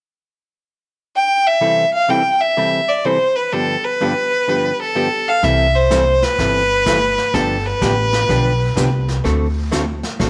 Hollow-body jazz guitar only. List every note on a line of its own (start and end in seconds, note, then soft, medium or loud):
1.61 1.84 C3 medium
1.61 1.84 E3 medium
1.61 1.84 G3 soft
1.61 1.84 C4 medium
1.61 1.84 E4 medium
1.61 1.84 A4 medium
2.08 2.21 C3 medium
2.08 2.21 E3 medium
2.08 2.21 G3 medium
2.08 2.21 C4 medium
2.08 2.22 E4 medium
2.08 2.22 A4 medium
2.57 2.80 C3 soft
2.57 2.80 E3 soft
2.57 2.80 G3 medium
2.57 2.80 C4 medium
2.57 2.80 E4 soft
2.57 2.80 A4 medium
3.05 3.17 C3 medium
3.05 3.17 E3 medium
3.05 3.17 G3 medium
3.05 3.17 C4 medium
3.05 3.17 E4 medium
3.05 3.17 A4 medium
3.52 3.75 G2 medium
3.52 3.75 D3 medium
3.52 3.75 F3 medium
3.52 3.75 B3 medium
3.52 3.75 D4 medium
3.52 3.75 G4 medium
4.01 4.12 G2 medium
4.01 4.13 D3 medium
4.01 4.13 F3 medium
4.01 4.13 B3 medium
4.01 4.13 D4 medium
4.01 4.13 G4 medium
4.48 4.70 G2 medium
4.48 4.70 D3 soft
4.48 4.71 F3 medium
4.48 4.71 B3 medium
4.48 4.71 D4 soft
4.48 4.71 G4 medium
4.95 5.07 G2 medium
4.95 5.07 D3 medium
4.95 5.07 F3 medium
4.95 5.08 B3 medium
4.95 5.08 D4 medium
4.95 5.08 G4 medium
5.43 5.66 C3 medium
5.43 5.66 E3 soft
5.43 5.66 G3 medium
5.43 5.66 C4 medium
5.43 5.66 E4 medium
5.43 5.66 A4 medium
5.90 6.03 C3 medium
5.90 6.03 E3 medium
5.90 6.03 G3 medium
5.90 6.03 C4 medium
5.90 6.03 E4 medium
5.90 6.03 A4 medium
6.39 6.61 C3 soft
6.39 6.61 E3 soft
6.39 6.61 G3 medium
6.39 6.61 C4 soft
6.39 6.62 E4 medium
6.39 6.62 A4 medium
6.86 6.98 C3 medium
6.86 6.98 E3 medium
6.86 6.98 G3 medium
6.86 6.98 C4 medium
6.86 6.98 E4 medium
6.86 6.99 A4 medium
7.34 7.56 D3 soft
7.34 7.56 F3 medium
7.34 7.56 B3 medium
7.34 7.57 D4 medium
7.34 7.57 G4 medium
7.81 7.93 D3 medium
7.81 7.93 F3 medium
7.81 7.93 B3 medium
7.81 7.94 D4 medium
7.81 7.94 G4 medium
8.29 8.51 D3 soft
8.29 8.51 F3 medium
8.29 8.52 B3 soft
8.29 8.52 D4 soft
8.29 8.52 G4 medium
8.76 8.88 D3 medium
8.76 8.88 F3 medium
8.76 8.88 B3 medium
8.76 8.89 D4 medium
8.76 8.89 G4 medium
9.24 9.46 D3 medium
9.24 9.47 A3 medium
9.24 9.47 C4 medium
9.24 9.47 F#4 medium
9.24 9.47 A4 medium
9.71 9.84 D3 medium
9.71 9.84 A3 medium
9.71 9.84 C4 medium
9.71 9.84 F#4 medium
9.71 9.84 A4 medium
10.19 10.30 D3 medium
10.19 10.30 A3 soft
10.19 10.30 C4 medium
10.19 10.30 F#4 medium
10.19 10.30 A4 medium